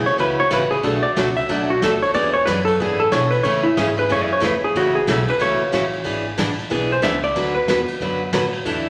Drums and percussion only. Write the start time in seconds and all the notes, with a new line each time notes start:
0.06 ride
0.19 kick, ride
0.51 kick, snare, hi-hat pedal, ride
0.72 ride
0.84 kick, ride
1.17 kick, snare, hi-hat pedal, ride
1.36 ride
1.49 kick, ride
1.82 kick, snare, hi-hat pedal, ride
2.03 ride
2.14 kick, ride
2.47 kick, snare, hi-hat pedal, ride
2.67 ride
2.80 kick
3.12 kick, snare, hi-hat pedal, ride
3.31 ride
3.45 kick, ride
3.77 kick, snare, hi-hat pedal, ride
3.97 ride
4.10 kick, ride
4.42 kick, snare, hi-hat pedal, ride
4.75 kick, ride
5.08 kick, snare, hi-hat pedal, ride
5.28 ride
5.40 kick, ride
5.73 kick, snare, hi-hat pedal, ride
5.93 ride
6.06 kick, ride
6.38 kick, snare, hi-hat pedal, ride
6.58 ride
6.71 kick, ride
7.03 kick, snare, hi-hat pedal, ride
7.23 ride
7.36 kick, ride
7.68 kick, snare, hi-hat pedal, ride
7.88 ride
8.00 kick
8.33 kick, snare, hi-hat pedal, ride
8.52 ride
8.65 kick, ride